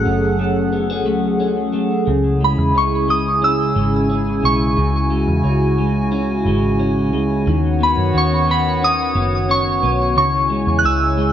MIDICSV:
0, 0, Header, 1, 5, 480
1, 0, Start_track
1, 0, Key_signature, 4, "minor"
1, 0, Tempo, 674157
1, 1479, Time_signature, 4, 2, 24, 8
1, 8064, End_track
2, 0, Start_track
2, 0, Title_t, "Synth bell"
2, 0, Program_c, 0, 98
2, 0, Note_on_c, 0, 90, 107
2, 497, Note_off_c, 0, 90, 0
2, 1740, Note_on_c, 0, 83, 86
2, 1976, Note_on_c, 0, 85, 90
2, 1977, Note_off_c, 0, 83, 0
2, 2209, Note_on_c, 0, 87, 101
2, 2215, Note_off_c, 0, 85, 0
2, 2450, Note_on_c, 0, 88, 104
2, 2451, Note_off_c, 0, 87, 0
2, 3170, Note_on_c, 0, 85, 92
2, 3186, Note_off_c, 0, 88, 0
2, 3616, Note_off_c, 0, 85, 0
2, 5577, Note_on_c, 0, 83, 89
2, 5815, Note_off_c, 0, 83, 0
2, 5822, Note_on_c, 0, 85, 95
2, 6057, Note_off_c, 0, 85, 0
2, 6059, Note_on_c, 0, 83, 79
2, 6273, Note_off_c, 0, 83, 0
2, 6296, Note_on_c, 0, 87, 103
2, 6770, Note_on_c, 0, 85, 109
2, 6782, Note_off_c, 0, 87, 0
2, 7237, Note_off_c, 0, 85, 0
2, 7246, Note_on_c, 0, 85, 109
2, 7680, Note_on_c, 0, 90, 84
2, 7685, Note_off_c, 0, 85, 0
2, 7724, Note_off_c, 0, 90, 0
2, 7728, Note_on_c, 0, 88, 109
2, 8064, Note_off_c, 0, 88, 0
2, 8064, End_track
3, 0, Start_track
3, 0, Title_t, "Analog synth pad"
3, 0, Program_c, 1, 89
3, 0, Note_on_c, 1, 54, 82
3, 0, Note_on_c, 1, 61, 77
3, 0, Note_on_c, 1, 68, 79
3, 0, Note_on_c, 1, 69, 72
3, 0, Note_on_c, 1, 78, 99
3, 1455, Note_off_c, 1, 78, 0
3, 1460, Note_off_c, 1, 54, 0
3, 1460, Note_off_c, 1, 69, 0
3, 1475, Note_on_c, 1, 49, 85
3, 1475, Note_on_c, 1, 64, 78
3, 1477, Note_on_c, 1, 80, 96
3, 3372, Note_off_c, 1, 68, 0
3, 3399, Note_on_c, 1, 66, 77
3, 5288, Note_off_c, 1, 64, 0
3, 5289, Note_off_c, 1, 49, 0
3, 5289, Note_off_c, 1, 80, 0
3, 5291, Note_off_c, 1, 61, 0
3, 5300, Note_off_c, 1, 66, 0
3, 5320, Note_on_c, 1, 73, 81
3, 5322, Note_on_c, 1, 51, 82
3, 5323, Note_on_c, 1, 59, 81
3, 5324, Note_on_c, 1, 66, 77
3, 5325, Note_on_c, 1, 78, 95
3, 7222, Note_off_c, 1, 51, 0
3, 7222, Note_off_c, 1, 59, 0
3, 7222, Note_off_c, 1, 66, 0
3, 7223, Note_off_c, 1, 78, 0
3, 7237, Note_on_c, 1, 56, 84
3, 7239, Note_on_c, 1, 49, 88
3, 7239, Note_on_c, 1, 64, 77
3, 7240, Note_on_c, 1, 80, 99
3, 8064, Note_off_c, 1, 49, 0
3, 8064, Note_off_c, 1, 56, 0
3, 8064, Note_off_c, 1, 64, 0
3, 8064, Note_off_c, 1, 73, 0
3, 8064, Note_off_c, 1, 80, 0
3, 8064, End_track
4, 0, Start_track
4, 0, Title_t, "Clean electric guitar"
4, 0, Program_c, 2, 27
4, 0, Note_on_c, 2, 54, 90
4, 0, Note_on_c, 2, 57, 64
4, 39, Note_on_c, 2, 61, 63
4, 271, Note_off_c, 2, 57, 0
4, 280, Note_on_c, 2, 57, 58
4, 514, Note_off_c, 2, 61, 0
4, 517, Note_on_c, 2, 59, 67
4, 639, Note_off_c, 2, 59, 0
4, 639, Note_on_c, 2, 61, 54
4, 744, Note_off_c, 2, 57, 0
4, 753, Note_on_c, 2, 57, 61
4, 987, Note_off_c, 2, 61, 0
4, 995, Note_on_c, 2, 61, 59
4, 1226, Note_off_c, 2, 57, 0
4, 1235, Note_on_c, 2, 57, 56
4, 1473, Note_on_c, 2, 49, 79
4, 1478, Note_off_c, 2, 54, 0
4, 1525, Note_off_c, 2, 57, 0
4, 1714, Note_on_c, 2, 56, 58
4, 1954, Note_off_c, 2, 61, 0
4, 1957, Note_on_c, 2, 61, 63
4, 2190, Note_off_c, 2, 56, 0
4, 2198, Note_on_c, 2, 56, 61
4, 2432, Note_off_c, 2, 61, 0
4, 2434, Note_on_c, 2, 61, 69
4, 2666, Note_off_c, 2, 56, 0
4, 2675, Note_on_c, 2, 56, 63
4, 2913, Note_off_c, 2, 61, 0
4, 2916, Note_on_c, 2, 61, 62
4, 3147, Note_off_c, 2, 56, 0
4, 3156, Note_on_c, 2, 56, 58
4, 3388, Note_off_c, 2, 49, 0
4, 3397, Note_on_c, 2, 49, 89
4, 3625, Note_off_c, 2, 56, 0
4, 3633, Note_on_c, 2, 56, 62
4, 3869, Note_off_c, 2, 61, 0
4, 3872, Note_on_c, 2, 61, 66
4, 4109, Note_off_c, 2, 56, 0
4, 4118, Note_on_c, 2, 56, 60
4, 4353, Note_off_c, 2, 61, 0
4, 4356, Note_on_c, 2, 61, 70
4, 4592, Note_off_c, 2, 56, 0
4, 4600, Note_on_c, 2, 56, 65
4, 4835, Note_off_c, 2, 61, 0
4, 4838, Note_on_c, 2, 61, 65
4, 5069, Note_off_c, 2, 56, 0
4, 5078, Note_on_c, 2, 56, 63
4, 5318, Note_off_c, 2, 49, 0
4, 5320, Note_on_c, 2, 51, 88
4, 5367, Note_off_c, 2, 56, 0
4, 5558, Note_on_c, 2, 59, 67
4, 5579, Note_off_c, 2, 61, 0
4, 5801, Note_on_c, 2, 61, 66
4, 6032, Note_off_c, 2, 59, 0
4, 6040, Note_on_c, 2, 59, 65
4, 6278, Note_off_c, 2, 61, 0
4, 6281, Note_on_c, 2, 61, 71
4, 6509, Note_off_c, 2, 59, 0
4, 6518, Note_on_c, 2, 59, 67
4, 6756, Note_off_c, 2, 61, 0
4, 6758, Note_on_c, 2, 61, 64
4, 6990, Note_off_c, 2, 59, 0
4, 6999, Note_on_c, 2, 59, 60
4, 7239, Note_on_c, 2, 49, 92
4, 7240, Note_off_c, 2, 51, 0
4, 7287, Note_off_c, 2, 59, 0
4, 7476, Note_on_c, 2, 56, 66
4, 7715, Note_off_c, 2, 61, 0
4, 7718, Note_on_c, 2, 61, 66
4, 7956, Note_off_c, 2, 56, 0
4, 7959, Note_on_c, 2, 56, 67
4, 8064, Note_off_c, 2, 49, 0
4, 8064, Note_off_c, 2, 56, 0
4, 8064, Note_off_c, 2, 61, 0
4, 8064, End_track
5, 0, Start_track
5, 0, Title_t, "Picked electric bass"
5, 0, Program_c, 3, 34
5, 42, Note_on_c, 3, 30, 94
5, 758, Note_off_c, 3, 30, 0
5, 758, Note_on_c, 3, 37, 83
5, 1240, Note_off_c, 3, 37, 0
5, 1240, Note_on_c, 3, 35, 86
5, 1468, Note_off_c, 3, 35, 0
5, 1479, Note_on_c, 3, 37, 103
5, 1821, Note_off_c, 3, 37, 0
5, 1837, Note_on_c, 3, 40, 105
5, 1959, Note_off_c, 3, 40, 0
5, 1959, Note_on_c, 3, 37, 99
5, 2651, Note_off_c, 3, 37, 0
5, 2677, Note_on_c, 3, 32, 91
5, 3134, Note_off_c, 3, 32, 0
5, 3157, Note_on_c, 3, 35, 100
5, 3386, Note_off_c, 3, 35, 0
5, 3395, Note_on_c, 3, 37, 104
5, 3739, Note_off_c, 3, 37, 0
5, 3757, Note_on_c, 3, 40, 95
5, 3872, Note_off_c, 3, 40, 0
5, 3876, Note_on_c, 3, 37, 99
5, 4597, Note_on_c, 3, 32, 98
5, 4607, Note_off_c, 3, 37, 0
5, 5077, Note_off_c, 3, 32, 0
5, 5077, Note_on_c, 3, 37, 97
5, 5306, Note_off_c, 3, 37, 0
5, 5319, Note_on_c, 3, 39, 117
5, 5661, Note_off_c, 3, 39, 0
5, 5678, Note_on_c, 3, 42, 94
5, 5793, Note_off_c, 3, 42, 0
5, 5799, Note_on_c, 3, 39, 94
5, 6490, Note_off_c, 3, 39, 0
5, 6517, Note_on_c, 3, 30, 104
5, 6974, Note_off_c, 3, 30, 0
5, 6998, Note_on_c, 3, 35, 88
5, 7238, Note_off_c, 3, 35, 0
5, 7238, Note_on_c, 3, 37, 106
5, 7581, Note_off_c, 3, 37, 0
5, 7597, Note_on_c, 3, 40, 99
5, 7712, Note_off_c, 3, 40, 0
5, 7719, Note_on_c, 3, 37, 102
5, 8064, Note_off_c, 3, 37, 0
5, 8064, End_track
0, 0, End_of_file